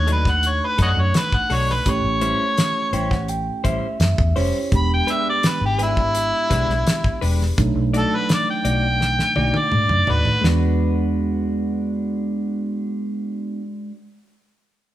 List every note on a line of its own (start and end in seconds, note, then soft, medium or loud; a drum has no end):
0.00 0.59 D#2 medium
0.00 1.82 A3 medium
0.00 1.82 D4 medium
0.00 1.82 D#4 medium
0.00 1.82 F#4 medium
0.07 0.30 F#3 medium
0.07 0.29 D4 medium
0.07 0.29 D#4 medium
0.07 0.29 A4 medium
0.07 closed hi-hat medium
0.13 0.32 B4 medium
0.25 kick medium
0.25 snare soft
0.30 0.50 F#5 medium
0.43 closed hi-hat medium
0.48 0.67 C#5 medium
0.66 0.80 B4 medium
0.78 0.93 F#2 medium
0.78 1.01 F#3 medium
0.78 1.01 D4 medium
0.78 1.00 D#4 medium
0.78 1.00 A4 medium
0.78 kick medium
0.78 snare soft
0.78 closed hi-hat medium
0.82 0.89 C#5 medium
0.82 0.90 D#5 medium
0.82 1.03 F#5 loud
0.97 1.11 F#2 medium
0.97 1.20 C#5 medium
1.14 snare loud
1.14 closed hi-hat medium
1.19 1.38 B4 loud
1.32 muted fingered electric bass stroke soft
1.32 kick medium
1.36 1.56 F#5 loud
1.50 1.79 B1 medium
1.50 1.72 F#3 medium
1.50 1.72 D4 medium
1.50 1.72 D#4 medium
1.50 1.72 A4 medium
1.50 open hi-hat medium
1.55 1.74 C#5 loud
1.69 1.91 B4 medium
1.69 snare soft
1.86 2.00 A1 medium
1.86 4.33 A3 medium
1.86 4.32 C#4 medium
1.86 4.33 E4 medium
1.86 4.33 G4 medium
1.86 kick loud
1.86 closed hi-hat medium
1.90 3.27 C#5 loud
2.04 2.32 A1 loud
2.21 2.44 G3 medium
2.21 2.44 C#4 medium
2.21 2.43 E4 medium
2.21 2.43 C5 medium
2.21 closed hi-hat medium
2.57 snare loud
2.57 closed hi-hat medium
2.93 3.49 A1 loud
2.93 3.15 G3 medium
2.93 3.15 C#4 medium
2.93 3.15 E4 medium
2.93 3.15 C5 medium
2.93 3.10 G5 medium
2.93 closed hi-hat medium
3.11 3.28 F#5 medium
3.11 kick medium
3.11 snare soft
3.28 3.63 G5 medium
3.28 closed hi-hat medium
3.64 3.79 A1 medium
3.64 3.87 G3 medium
3.64 3.86 C#4 medium
3.64 3.86 E4 medium
3.64 3.86 C5 medium
3.64 3.98 E5 medium
3.64 kick medium
3.64 closed hi-hat medium
4.00 4.14 F#2 medium
4.00 4.34 E5 medium
4.00 snare loud
4.00 closed hi-hat medium
4.18 4.32 E2 medium
4.18 kick loud
4.36 4.50 F1 medium
4.36 4.58 G3 medium
4.36 4.72 C#4 medium
4.36 4.58 C#4 medium
4.36 4.72 E4 medium
4.36 4.58 E4 medium
4.36 4.71 G4 medium
4.36 4.58 C5 medium
4.36 4.72 C5 medium
4.36 4.69 C#5 medium
4.36 open hi-hat medium
4.72 5.00 E1 loud
4.72 7.54 G#3 medium
4.72 7.54 B3 medium
4.72 7.54 D4 medium
4.72 7.54 G4 medium
4.72 kick loud
4.72 closed hi-hat medium
4.76 4.91 B5 loud
4.94 5.13 G5 loud
5.07 5.30 G#3 medium
5.07 5.30 D4 medium
5.07 5.29 G4 medium
5.07 5.29 B4 medium
5.07 closed hi-hat medium
5.12 5.27 E5 medium
5.30 5.49 D5 medium
5.43 snare loud
5.43 closed hi-hat medium
5.48 5.62 B4 medium
5.61 6.31 G#1 loud
5.65 5.80 G4 medium
5.79 6.01 G#3 medium
5.79 6.01 D4 medium
5.79 6.01 G4 medium
5.79 6.00 B4 medium
5.79 closed hi-hat medium
5.83 7.20 E4 loud
5.97 kick medium
6.15 closed hi-hat medium
6.50 6.65 B1 medium
6.50 6.73 G#3 medium
6.50 6.72 D4 medium
6.50 6.72 G4 medium
6.50 6.72 B4 medium
6.50 kick medium
6.50 snare soft
6.50 closed hi-hat medium
6.68 6.82 B1 medium
6.68 snare soft
6.87 snare loud
6.87 closed hi-hat medium
7.04 muted fingered electric bass stroke soft
7.04 kick medium
7.21 7.50 E1 medium
7.21 7.44 G#3 medium
7.21 7.44 D4 medium
7.21 7.43 G4 medium
7.21 7.43 B4 medium
7.21 open hi-hat medium
7.41 snare soft
7.58 7.72 B1 loud
7.58 9.33 F#3 medium
7.58 9.33 A3 medium
7.58 9.33 D4 medium
7.58 9.33 D#4 medium
7.58 kick loud
7.58 closed hi-hat medium
7.75 8.03 B1 loud
7.94 8.16 A3 medium
7.94 8.16 D#4 medium
7.94 8.15 F#4 medium
7.94 8.17 A4 loud
7.94 8.15 D5 medium
7.94 closed hi-hat medium
8.16 8.30 B4 medium
8.29 snare loud
8.29 closed hi-hat medium
8.34 8.48 D5 medium
8.50 9.59 G5 loud
8.65 9.20 B1 loud
8.65 8.87 A3 medium
8.65 8.87 D#4 medium
8.65 8.86 F#4 medium
8.65 8.86 D5 medium
8.65 closed hi-hat medium
9.01 snare medium
9.19 snare medium
9.36 9.50 B1 medium
9.36 10.44 A3 medium
9.36 9.58 A3 medium
9.36 10.43 D4 soft
9.36 9.58 D#4 medium
9.36 10.44 D#4 soft
9.36 9.58 F#4 medium
9.36 10.44 F#4 medium
9.36 9.58 D5 medium
9.36 high tom medium
9.54 high tom medium
9.58 10.13 D5 loud
9.72 9.86 G#2 medium
9.72 mid tom medium
9.89 10.04 F#2 medium
9.89 mid tom medium
10.07 10.22 D#2 medium
10.07 10.30 A3 medium
10.07 10.30 D#4 medium
10.07 10.29 F#4 medium
10.07 10.44 B4 loud
10.07 10.29 D5 medium
10.07 floor tom loud
10.25 floor tom medium
10.41 13.60 E2 medium
10.41 13.91 G#3 medium
10.41 13.59 G#3 medium
10.41 13.60 B3 medium
10.41 13.94 D4 medium
10.41 13.62 D4 medium
10.41 snare loud
10.46 13.63 F#4 medium
10.46 13.97 F#4 medium
10.46 13.99 B4 loud